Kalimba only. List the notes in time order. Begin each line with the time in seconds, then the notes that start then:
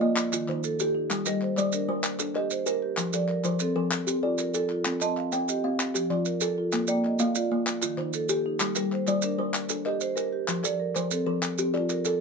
Already playing: F5
0.01 A#3 D#5
0.33 F4
0.49 D#3 C5
0.80 G4
1.10 G3
1.27 A#4
1.58 G3 D5
1.89 G3 C5
2.19 A4
2.35 A#4 D#5
2.66 A#4
2.98 F3
3.14 A4
3.45 F3 C5
3.76 F3 A#4
4.07 G4
4.23 A4 D5
4.54 A4
4.86 C4
5.01 D#5
5.33 C4 G5
5.64 C4 F5
5.95 G4
6.10 F3 D5
6.42 A4
6.73 A#3
6.88 D5
7.20 A#3 F5
7.52 A#3
7.82 F4
7.97 D#3 C5
8.29 G4
8.61 G3
8.76 A#4
9.08 G3 D5
9.39 G3 C5
9.70 A4
9.86 A#4 D#5
10.17 A#4
10.48 F3
10.64 A4
10.96 F3 C5
11.26 F3 A#4
11.59 G4
11.74 A4 D5
12.06 A4